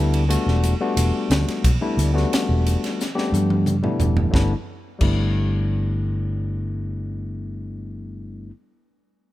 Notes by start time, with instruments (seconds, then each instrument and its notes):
Already playing: fingered electric bass D2, tine electric piano G3 A3 B3 D4 E4
0.14 ride
0.28 tine electric piano G3 A3 B3 D4 F#4, hi-hat pedal, ride
0.46 fingered electric bass E1, snare
0.63 hi-hat pedal, ride
0.81 tine electric piano G3 A3 B3 D4 F#4
0.97 fingered electric bass E1, hi-hat pedal, ride
1.30 fingered electric bass D2, snare, hi-hat pedal, ride
1.48 snare, ride
1.64 fingered electric bass B1, kick, hi-hat pedal, ride
1.81 tine electric piano G3 A3 B3 D4 E4
1.97 fingered electric bass D2, hi-hat pedal, ride
2.14 tine electric piano G3 A3 B3 D4 F#4, snare
2.33 snare, hi-hat pedal, ride
2.49 fingered electric bass E1
2.66 hi-hat pedal, ride
2.84 snare, ride
3.00 snare, hi-hat pedal
3.15 tine electric piano G3 A3 B3 D4 G4, snare
3.32 fingered electric bass G2, hi-hat pedal, high tom
3.50 high tom
3.66 hi-hat pedal, mid tom
3.82 tine electric piano G3 A3 B3 D4 E4, mid tom
3.99 fingered electric bass E1, floor tom, hi-hat pedal
4.17 floor tom
4.31 fingered electric bass G1, tine electric piano G3 A3 B3 D4, kick
4.35 tine electric piano E4, snare
4.99 fingered electric bass G1, tine electric piano G3 A3 B3 D4, kick, crash
5.03 tine electric piano E4